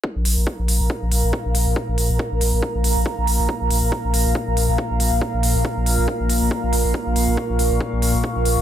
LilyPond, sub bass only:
\new Staff \with { instrumentName = "Sub bass" } { \clef bass \time 4/4 \key bes \minor \tempo 4 = 139 r16 bes,,16 bes,,16 bes,,16 r16 bes,,16 bes,,16 bes,,16 r16 bes,,16 bes,,16 bes,,16 r16 bes,,16 bes,,16 bes,,16 | r16 bes,,16 bes,,16 bes,,16 r16 bes,,16 bes,,16 bes,,16 r16 bes,,16 bes,,16 bes,,16 r16 bes,,16 bes,,16 bes,,16 | r16 bes,,16 bes,,16 bes,,16 r16 bes,,16 bes,,16 bes,,16 r16 bes,,16 bes,,16 bes,,16 r16 bes,,16 bes,,16 bes,,16 | r16 bes,,16 bes,,16 bes,,16 r16 bes,,16 bes,,16 bes,,16 r16 bes,,16 bes,,16 bes,,16 r16 bes,,16 bes,,16 bes,,16 |
r16 bes,,16 bes,,16 bes,,16 r16 bes,,16 bes,,16 bes,,16 r16 bes,,16 bes,,16 bes,,16 r16 bes,,16 bes,,16 bes,,16 | }